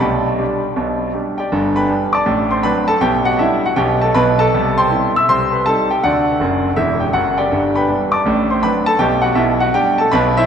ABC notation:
X:1
M:4/4
L:1/8
Q:"Swing" 1/4=160
K:G
V:1 name="Grand piano"
[dgb]6 z [Gdg]- | [Gdg] [Bgb]2 [dad']2 [cc'] [Bb] [Aa] | [Gg] [Ff] [Ee] [Ff] [Gg] [Aa] [Bb] [Aa]- | [Aa] [cgc']2 [ee'] [cc'] [Bb] [Aa] [Gg] |
[Fdf]4 [Ee] [Gg] [Ff] [Gdg]- | [Gdg] [Bgb]2 [dad']2 [cc'] [Bb] [Aa] | [Gg] [Ff] [Ee] [Ff] [Gg] [Aa] [Bb] [Ece] |]
V:2 name="Grand piano" clef=bass
[B,,,B,,]2 [G,DG]2 [B,,,B,,]2 [G,DG]2 | [G,,,G,,]2 [G,DG]2 [A,,,A,,]2 [F,CD]2 | [B,,,B,,]2 [G,D]2 [B,,,B,,]2 [B,,,B,,]2 | [C,,C,]2 [G,CE]2 [C,,C,]2 [G,C_E]2 |
[D,,D,]2 [F,,,F,,]2 [E,,,E,,]2 [F,,,F,,]2 | [G,,,G,,]2 [G,B,D]2 [A,,,A,,]2 [F,CD]2 | [B,,,B,,]2 [B,,,B,,]2 [G,D]2 [B,,,B,,]2 |]